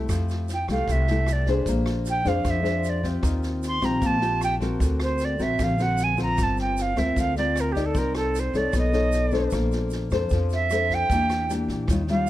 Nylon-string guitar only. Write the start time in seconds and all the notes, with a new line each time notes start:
Already playing: A3 E4 G4
0.10 F3
0.70 A3 E4 G4
0.90 C3
1.10 A3 E4 G4
1.48 D4 G#4 C5
1.68 A#3
2.25 D4 G#4 C5
2.44 F3
2.62 D4 G#4 C5
3.03 C4 F4 G4
3.23 D#3
3.82 C4 F4 G4
4.01 A#3
4.21 C4 F4 G4
4.61 C4 F#4 A#4
4.80 D3
5.39 C4 F#4 A#4
5.59 D3
5.79 C4 F#4 A#4
6.17 C4 F4 A#4
6.37 G3
6.97 C4 F4 A#4
7.17 D3
7.38 C4 F4 A#4
7.76 D#4 A#4 D5
7.95 C4
8.55 D#4 A4 C#5
8.74 B3
8.93 D#4 A4 C#5
9.32 D4 A4 C5
9.53 A#3
10.12 D4 A4 C5
10.33 F3
10.71 D4 A4 C5
11.11 E3 A#3 D4 G4
11.50 A#3 D4 G4
11.89 D#3 G3 C#4 F4
12.10 G3 C#4 F4